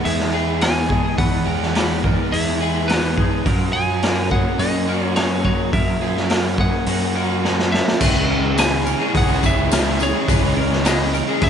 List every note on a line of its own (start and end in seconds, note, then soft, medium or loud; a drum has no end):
0.00 0.34 E2 medium
0.00 0.33 E3 medium
0.00 0.60 B3 medium
0.00 1.18 B3 medium
0.00 0.60 E4 medium
0.00 0.31 G#4 medium
0.05 0.97 E2 medium
0.05 0.89 G#3 medium
0.05 0.33 G#4 medium
0.05 0.63 E5 medium
0.05 open hi-hat medium
0.20 snare soft
0.32 1.44 G#4 medium
0.32 1.75 G#4 medium
0.32 0.60 B4 medium
0.61 2.04 B3 medium
0.61 1.73 E4 medium
0.61 0.88 A#4 medium
0.61 1.18 G#5 loud
0.61 snare loud
0.61 open hi-hat medium
0.89 1.16 E3 medium
0.89 1.74 G#3 medium
0.89 1.18 G#4 medium
0.89 kick medium
1.17 1.41 E2 loud
1.17 2.61 E2 medium
1.17 2.60 E3 medium
1.17 1.47 B4 medium
1.17 2.35 F#5 medium
1.17 kick loud
1.17 open hi-hat medium
1.45 2.16 E2 medium
1.45 2.59 G#4 medium
1.45 1.75 A#4 medium
1.62 snare soft
1.74 2.32 G#3 medium
1.74 2.31 E4 medium
1.74 2.04 B4 medium
1.74 snare medium
1.74 open hi-hat medium
2.02 3.45 B3 medium
2.02 2.88 B3 medium
2.02 2.32 A#4 medium
2.02 kick medium
2.32 3.24 E2 medium
2.32 3.17 G#3 medium
2.32 2.88 E4 medium
2.32 2.60 G#4 medium
2.32 2.91 E5 medium
2.32 open hi-hat medium
2.61 3.46 G#4 medium
2.61 2.88 B4 medium
2.88 3.46 B3 medium
2.88 3.46 E4 medium
2.88 3.16 A#4 medium
2.88 3.28 B4 medium
2.88 snare medium
2.88 open hi-hat medium
3.17 3.45 E3 medium
3.17 3.46 G#3 medium
3.17 3.45 G#4 medium
3.17 kick medium
3.45 3.69 F#2 loud
3.45 4.88 F#2 medium
3.45 4.88 F#3 medium
3.45 3.74 A#4 medium
3.45 kick loud
3.45 open hi-hat medium
3.73 4.44 F#2 medium
3.73 4.87 F#4 medium
3.73 4.02 G#4 medium
3.73 4.31 G#5 loud
4.02 4.58 A#3 medium
4.02 4.59 C#4 medium
4.02 4.31 A#4 medium
4.02 snare loud
4.02 open hi-hat medium
4.31 5.73 A#3 medium
4.31 5.15 C#4 medium
4.31 4.60 G#4 medium
4.31 4.61 F#5 medium
4.31 kick medium
4.59 5.51 F#2 loud
4.59 5.43 A#3 medium
4.59 5.15 C#4 medium
4.59 4.88 F#4 medium
4.59 5.05 D#5 medium
4.59 open hi-hat soft
4.88 6.30 F#4 medium
4.88 6.00 F#4 medium
4.88 5.16 A#4 medium
5.05 5.16 C#5 medium
5.16 6.57 C#4 medium
5.16 6.29 C#4 medium
5.16 5.45 G#4 medium
5.16 5.44 C#5 medium
5.16 snare loud
5.16 open hi-hat medium
5.44 5.72 F#3 medium
5.44 6.29 A#3 medium
5.44 5.73 F#4 medium
5.44 5.73 C#5 medium
5.44 kick medium
5.72 7.15 F#2 medium
5.72 5.96 F#2 loud
5.72 7.15 F#3 medium
5.72 6.01 A#4 medium
5.72 6.55 E5 medium
5.72 kick loud
5.72 open hi-hat soft
6.01 6.71 F#2 medium
6.01 7.14 F#4 medium
6.01 6.29 G#4 medium
6.17 snare soft
6.29 6.86 A#3 medium
6.29 6.86 C#4 medium
6.29 6.58 A#4 medium
6.29 snare loud
6.29 open hi-hat medium
6.58 8.01 A#3 medium
6.58 7.43 C#4 medium
6.58 6.87 G#4 medium
6.58 7.69 F#5 medium
6.58 kick medium
6.86 7.79 F#2 medium
6.86 7.72 A#3 medium
6.86 7.42 C#4 medium
6.86 7.16 F#4 medium
6.86 open hi-hat medium
7.15 8.01 F#4 medium
7.15 7.44 A#4 medium
7.44 8.01 C#4 medium
7.44 7.73 G#4 medium
7.44 snare medium
7.59 snare medium
7.72 7.99 F#3 medium
7.72 8.01 A#3 medium
7.72 8.01 F#4 medium
7.72 8.60 E5 medium
7.72 snare medium
7.88 snare medium
8.00 8.93 C#2 loud
8.00 8.28 C#3 medium
8.00 8.56 C#3 loud
8.00 8.16 E3 loud
8.00 8.57 G#3 loud
8.00 8.15 G#3 loud
8.00 8.17 C#4 loud
8.00 8.14 C#4 medium
8.00 8.16 E4 loud
8.00 8.14 G#4 loud
8.00 8.29 B4 loud
8.00 kick loud
8.00 crash loud
8.00 tambourine medium
8.14 8.29 E3 medium
8.14 8.29 G#3 medium
8.14 8.30 C#4 medium
8.14 8.58 C#4 medium
8.14 8.58 E4 medium
8.14 8.58 G#4 medium
8.28 8.57 C#3 medium
8.28 8.57 E3 medium
8.28 8.58 G#3 medium
8.28 8.59 C#4 medium
8.28 8.57 A#4 medium
8.57 9.69 C#3 medium
8.57 8.84 C#3 medium
8.57 8.85 E3 medium
8.57 8.86 G#3 medium
8.57 8.73 C#4 loud
8.57 8.87 C#4 loud
8.57 8.72 E4 medium
8.57 8.71 G#4 loud
8.57 8.85 B4 medium
8.57 9.17 G#5 loud
8.57 snare loud
8.57 open hi-hat medium
8.57 tambourine medium
8.71 8.86 C#4 medium
8.71 8.86 E4 medium
8.71 8.86 G#4 medium
8.85 9.28 C#3 medium
8.85 9.01 E3 medium
8.85 9.00 G#3 medium
8.85 8.99 C#4 medium
8.85 9.14 A#4 medium
8.85 muted overdriven electric guitar stroke soft
8.85 tambourine medium
8.99 9.30 E3 medium
8.99 9.29 G#3 medium
8.99 9.28 C#4 medium
8.99 9.30 C#4 medium
8.99 9.28 E4 medium
8.99 9.27 G#4 medium
9.14 9.38 C#2 loud
9.14 9.75 G#4 loud
9.14 9.45 F#5 medium
9.14 kick loud
9.14 open hi-hat medium
9.28 9.41 E3 medium
9.28 9.43 G#3 medium
9.28 9.43 C#4 medium
9.28 9.42 C#4 medium
9.28 9.42 E4 medium
9.28 9.43 G#4 medium
9.41 10.12 C#2 medium
9.41 9.68 C#3 medium
9.41 9.57 E3 medium
9.41 9.70 G#3 medium
9.41 9.56 G#3 medium
9.41 9.71 C#4 medium
9.41 9.55 C#4 medium
9.41 9.71 E4 medium
9.41 9.72 G#4 medium
9.41 9.71 B4 medium
9.41 kick medium
9.41 tambourine medium
9.46 10.03 E5 loud
9.56 9.70 E3 medium
9.56 9.71 G#3 medium
9.56 9.72 C#4 medium
9.56 tambourine soft
9.70 9.97 C#3 medium
9.70 10.13 C#3 medium
9.70 9.98 E3 loud
9.70 9.98 G#3 medium
9.70 10.00 G#3 loud
9.70 9.86 C#4 medium
9.70 10.00 C#4 medium
9.70 9.84 E4 medium
9.70 9.84 G#4 loud
9.70 10.00 A#4 medium
9.70 snare loud
9.70 open hi-hat medium
9.70 tambourine loud
9.84 9.99 C#4 medium
9.84 9.99 E4 medium
9.84 10.00 G#4 medium
9.98 10.25 C#3 medium
9.98 10.13 E3 medium
9.98 10.27 G#3 medium
9.98 10.13 G#3 medium
9.98 10.15 C#4 medium
9.98 10.12 C#4 medium
9.98 10.13 E4 medium
9.98 10.60 G#4 medium
9.98 10.12 G#4 medium
9.98 tambourine medium
10.03 10.87 C#5 loud
10.12 10.25 E3 medium
10.12 10.27 G#3 medium
10.12 10.28 C#4 medium
10.12 10.28 E4 medium
10.12 10.29 G#4 medium
10.26 11.21 C#2 loud
10.26 10.54 C#3 loud
10.26 10.70 C#3 medium
10.26 10.42 E3 loud
10.26 10.42 G#3 loud
10.26 10.84 G#3 loud
10.26 10.40 C#4 loud
10.26 10.44 C#4 loud
10.26 10.42 E4 loud
10.26 10.41 G#4 loud
10.26 10.56 B4 loud
10.26 kick loud
10.26 open hi-hat medium
10.26 tambourine medium
10.41 10.54 E3 medium
10.41 10.56 G#3 medium
10.41 10.57 C#4 medium
10.41 10.85 C#4 medium
10.41 10.84 E4 medium
10.41 10.86 G#4 medium
10.55 10.82 C#3 medium
10.55 10.83 E3 medium
10.55 10.85 G#3 medium
10.55 10.85 C#4 medium
10.55 10.85 A#4 medium
10.73 snare soft
10.83 11.10 C#3 loud
10.83 11.27 C#3 loud
10.83 11.11 E3 medium
10.83 11.13 G#3 medium
10.83 11.01 C#4 medium
10.83 11.13 C#4 loud
10.83 10.99 E4 loud
10.83 10.99 G#4 medium
10.83 11.13 B4 medium
10.83 snare loud
10.83 open hi-hat medium
10.83 tambourine loud
10.87 11.43 D#5 medium
10.99 11.14 C#4 medium
10.99 11.13 E4 medium
10.99 11.14 G#4 medium
11.11 11.50 C#3 medium
11.11 11.27 E3 medium
11.11 11.27 G#3 medium
11.11 11.26 C#4 medium
11.11 11.42 A#4 medium
11.11 muted overdriven electric guitar stroke soft
11.11 tambourine medium
11.26 11.50 E3 medium
11.26 11.50 G#3 medium
11.26 11.50 C#4 medium
11.26 11.50 E4 medium
11.26 11.50 G#4 medium
11.41 11.50 C#2 loud
11.41 11.50 G#4 loud
11.41 11.50 E5 loud
11.41 kick loud
11.41 open hi-hat medium